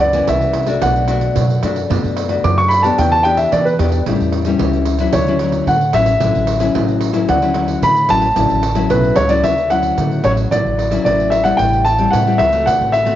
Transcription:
Already playing: C#2 F#2 E3 A#3 C#4
0.00 D5, pandeiro
0.13 E3 A#3 C#4, pandeiro
0.28 C2 E5, pandeiro
0.41 pandeiro
0.54 pandeiro
0.67 A3 D4 F#4, pandeiro
0.82 B1 B2 F#5, pandeiro
0.96 pandeiro
1.08 A3 D4 F#4, pandeiro
1.21 pandeiro
1.36 F#2 B2, pandeiro
1.50 pandeiro
1.63 F#2 A3 D4 F#4, pandeiro
1.76 pandeiro
1.89 F#2 B2 A3 D4 F#4, pandeiro
2.04 F#2, pandeiro
2.16 pandeiro
2.29 A3 D4 F#4, pandeiro
2.44 F#2 D6, pandeiro
2.58 C#6, pandeiro
2.68 B5, pandeiro
2.82 B3 D4 G4 A5, pandeiro
2.98 E2 E3 G5, pandeiro
3.12 A5, pandeiro
3.23 B3 D4 G4 G5, pandeiro
3.37 E5, pandeiro
3.52 B2 E3 D5, pandeiro
3.65 B4, pandeiro
3.79 E2 B3 D4 G4, pandeiro
3.92 pandeiro
4.06 A1 A2 G3 C#4 E4, pandeiro
4.20 E2, pandeiro
4.32 pandeiro
4.45 G3 C#4 E4, pandeiro
4.59 C#2 E3, pandeiro
4.73 pandeiro
4.85 pandeiro
4.99 F#3 C#4 E4, pandeiro
5.13 D2 D3 C#5, pandeiro
5.27 F#3 C#4 E4, pandeiro
5.39 F#3 C#4 E4, pandeiro
5.52 pandeiro
5.67 A2 D3 F#5, pandeiro
5.81 pandeiro
5.93 A1 F#3 C#4 E4 E5, pandeiro
6.06 pandeiro
6.21 A1 D3 F#3 C#4 E4, pandeiro
6.35 A1, pandeiro
6.47 pandeiro
6.60 F#3 C#4 E4, pandeiro
6.74 A1 A2, pandeiro
6.88 pandeiro
7.01 pandeiro
7.13 F#3 C#4 E4, pandeiro
7.28 D2 D3 F#5, pandeiro
7.42 F#3 C#4 E4, pandeiro
7.54 F#3 C#4 E4, pandeiro
7.68 pandeiro
7.82 A2 D3 B5, pandeiro
7.96 pandeiro
8.09 A1 F#3 C#4 E4 A5, pandeiro
8.22 pandeiro
8.36 A1 D3 F#3 C#4 E4, pandeiro
8.50 A1, pandeiro
8.63 pandeiro
8.75 F#3 C#4 E4, pandeiro
8.90 B1 A2 B4, pandeiro
9.03 pandeiro
9.16 C#2 C#5, pandeiro
9.29 F#3 C#4 E4 D5, pandeiro
9.44 D2 D3 E5, pandeiro
9.58 pandeiro
9.70 F#3 C#4 E4 F#5, pandeiro
9.83 pandeiro
9.98 A2 D3, pandeiro
10.11 pandeiro
10.24 A1 F#3 C#4 E4 C#5, pandeiro
10.37 pandeiro
10.51 A1 D3 F#3 E4 D5, pandeiro
10.65 A1, pandeiro
10.79 pandeiro
10.91 F#3 C#4 E4, pandeiro
11.05 A1 A2 D5, pandeiro
11.20 pandeiro
11.30 E5, pandeiro
11.44 G3 C4 E4 F#5, pandeiro
11.57 A1 A2 G5, pandeiro
11.73 pandeiro
11.85 A5, pandeiro
11.98 G3 C4 E4, pandeiro
12.11 A2 E3 F#5, pandeiro
12.27 G3 C4 E4, pandeiro
12.38 C#2 E5, pandeiro
12.52 A3 C4 F#4, pandeiro
12.66 D2 D3 F#5, pandeiro
12.81 A1, pandeiro
12.92 E5, pandeiro
13.05 A3 C4 F#4, pandeiro

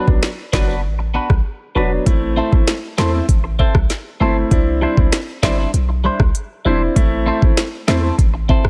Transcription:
0.07 B1 F#3 B3 D4, kick
0.23 finger snap, snare
0.53 F#1 F#3 B3 D4 F#4 B4, finger snap, kick, snare
0.68 B3 D4 F#4 B4
0.84 A1
0.99 muted clean electric guitar stroke
1.14 B3 D4 F#4 B4
1.30 B1, kick, cross-stick
1.75 E1 F#3 B3 D4 F#4 B4
2.06 A1 A3 C4 E4, kick, closed hi-hat
2.37 C4 E4 A4 C5
2.52 A1 A3 C4 E4, kick
2.67 finger snap, snare, closed hi-hat
2.98 E2 A3 C4 E4 A4 C5, finger snap, snare
3.13 C4 E4 A4 C5
3.29 A1, kick, closed hi-hat
3.44 muted clean electric guitar stroke
3.59 C4 E4 A4 C5, kick
3.75 B1, kick, cross-stick
3.90 snare, closed hi-hat
4.20 G1 A3 C4 E4 A4 C5
4.51 C2 C4 D4 E4, kick, closed hi-hat
4.81 G3 D4 E4 C5
4.97 C2 C4 D4 E4, kick
5.12 finger snap, snare, closed hi-hat
5.43 G1 G3 C4 D4 E4 C5, finger snap, kick, snare
5.58 G3 D4 E4 C5
5.74 B1, closed hi-hat
5.89 muted clean electric guitar stroke
6.04 G3 D4 E4 C5
6.20 C2, kick, cross-stick
6.35 closed hi-hat
6.65 E1 G3 C4 D4 E4 C5
6.96 A1 A3 C4 E4, kick, closed hi-hat
7.26 C4 E4 A4 C5
7.42 A1 A3 C4 E4, kick
7.57 finger snap, snare, closed hi-hat
7.88 E2 A3 C4 E4 A4 C5, finger snap, snare
8.03 C4 E4 A4 C5
8.19 A1, kick, closed hi-hat
8.34 muted clean electric guitar stroke
8.49 C4 E4 A4 C5, kick
8.65 B1, cross-stick

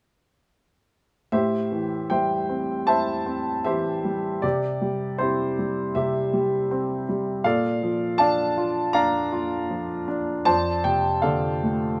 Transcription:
1.32 A2 G4 C5 E5
1.72 E3
2.10 G3 C5 E5 G5
2.49 C4
2.87 E4 C5 E5 A5
3.26 C4
3.65 E3 G4 C5 E5
4.05 G3
4.42 C3 G4 D5
4.81 G3
5.18 C4 E4 G4 C5
5.59 G3
5.95 C3 G4 E5
6.33 G3
6.71 C4
7.09 G3
7.44 A#2 A4 D5 F5
7.83 F3
8.18 D4 D5 F5 A5
8.57 F4
8.93 D4 D5 F5 A#5
9.32 F4
9.70 F3
10.08 D4
10.45 F2 C5 D5 A5
10.84 C3 G5
11.22 D3 A4 D5 F5
11.63 A3

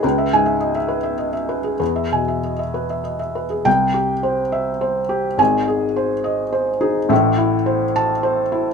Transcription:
0.03 C#2 B4
0.18 E5
0.33 G#2 G#5
0.46 E5
0.60 D#5
0.75 E5
0.88 B4
1.03 E5
1.18 D#5
1.33 E5
1.49 B4
1.64 G#4
1.80 E2 B4
1.96 E5
2.12 B2 G#5
2.28 E5
2.44 D#5
2.59 E5
2.74 B4
2.90 E5
3.04 D#5
3.19 E5
3.35 B4
3.50 G#4
3.65 C2 G5
3.94 G4
4.23 C5
4.52 E5
4.81 C5
5.09 G4
5.38 G#1 G#2 G#5
5.68 G#4
5.96 C5
6.24 D#5
6.53 C5
6.81 D#4 G#4
7.09 A1 A2 E5
7.38 E4
7.66 C5
7.96 A5
8.23 C5
8.52 E4

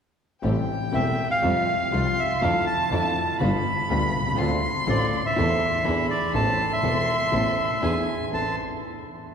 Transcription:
0.42 A1 A2 C3 G3 A3 C4 E4 G4 G5
0.92 E1 E2 C3 G3 A3 C4 E4 G4 E5
1.31 F5
1.42 F2 C3 F3 G3 C4 F4 F5
1.92 C2 C3 F3 G3 C4 F4 C6
2.19 E5
2.41 F2 D3 F3 A3 D4 E4 F5 A5
2.66 A5
2.91 F2 D3 F3 A3 D4 E4 A5
3.39 G1 G2 D3 G3 B3 F4 B5
3.89 D2 D3 G3 B3 F4
4.14 C2
4.20 B1
4.27 C2
4.32 C#2
4.37 D2 D3 A3 C4 D4 F4 C6
4.87 A1 A2 D3 A3 C4 D4 F4 D5
5.26 E5
5.36 E2 E3 A3 C4 E4 A4 C6
5.85 E2 E3 B3 D4 E4 G#4 B5
6.10 D5
6.33 A1 A2 E3 B3 C4 A4 A5 C6
6.73 E5
6.83 E1 E2 E3 B3 C4 A4
7.32 A1 A2 E3 B3 C4 A4
7.82 E2 E3 B3 D4 E4 G#4 G#5
8.32 A1 B3 C4 A4 B4 A5 C6

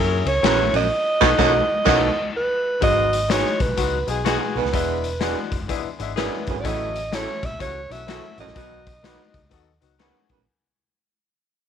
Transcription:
Already playing: F#2 F#3 A#3 C#4 E4 G#4 A#4
0.25 C#2 C#5, ride
0.42 A#1 E2 F#3 A#3 C#4 E4 F#4, snare, ride
0.47 A#4
0.73 A#1 F#2 D#5, open hi-hat, ride
1.21 B1 B2 D#3 F#3 A3 B3 D#4 F#4 A4, kick, snare, crash
1.37 B1 F#2 D#3 F#3 A3 B3 D#4 F#4 A4, kick, snare
1.84 B1 F#2 D#3 F#3 A3 B3 D#4 F#4 A4, kick, snare, crash
1.89 D#4 A4
2.37 B4
2.81 G#1 G#2 F#3 G#3 B3 D#4 F#4 D#5, kick, closed hi-hat
3.13 closed hi-hat
3.28 F#3 G#3 B3 D#4 F#4 G#4 C#5, snare, closed hi-hat
3.46 snare
3.60 B1 B4, kick, closed hi-hat
3.68 B1
3.76 C#2 D#3 F#3 G#3 B3 D#4 F#4, kick, closed hi-hat
4.06 B1 F#3 G#3 B3 D#4 G#4, closed hi-hat
4.24 B2 D#3 F#3 G#3 B3 D#4 F#4 G#4, snare, closed hi-hat
4.55 B1 B2 F#3 B3 D#4 G#4 B4, open hi-hat
4.64 C#2, snare
4.72 E1 E2 E3 G#3 B3 D4 E4, kick, closed hi-hat
5.04 closed hi-hat
5.20 E3 G#3 B3 D4 F#4 G#4, snare, closed hi-hat
5.52 F#1, kick, closed hi-hat
5.60 F#1
5.68 E3 G#3 B3 D4 E4 G#4, kick, closed hi-hat
5.85 muted fingered electric bass stroke
5.99 G#1 E3 G#3 B3 D4 E4, closed hi-hat
6.16 F#2 E3 G#3 B3 D4 E4 G#4 B4, snare, closed hi-hat
6.47 F#1 F#2 E3 B3 D4, kick, closed hi-hat
6.51 G#4
6.55 G#1
6.61 A1 E3 F#3 A3 D5
6.65 A2 C#4 E4 D#5, kick, closed hi-hat
6.96 closed hi-hat
7.11 E3 F#3 A3 C#4 E4 A4 C#5, snare, closed hi-hat
7.43 B1 E5, kick, closed hi-hat
7.51 B1
7.59 C#2 C#3 E3 F#3 A3 C#4 F#4 C#5, kick, closed hi-hat
7.89 B1 E3 F#3 A3 C#4 F#4 E5, closed hi-hat
8.06 F#2 C#3 E3 F#3 A3 C#4 E4 F#4, snare, closed hi-hat
8.10 E4 A4
8.38 A1 F#2 F#3 C#4 E4 D#5, closed hi-hat
8.42 A4
8.47 A#1, snare
8.54 B1 B2 D#3 F#3 B3 D#4 F#4, kick, closed hi-hat
8.86 kick, closed hi-hat
9.02 D#3 F#3 B3 D#4 F#4 B4, snare, closed hi-hat
9.34 C#2, kick, closed hi-hat
9.42 C#2
9.49 D#2 D#3 F#3 B3 D#4 F#4 A4, kick, closed hi-hat
9.81 C#2 D#3 F#3 B3 D#4 F#4, closed hi-hat
9.99 F#2 D#3 F#3 B3 D#4 F#4 G#4 B4, snare, closed hi-hat
10.29 B1 F#2 B3 D#4 F#4 B4, kick, closed hi-hat
10.38 A#1

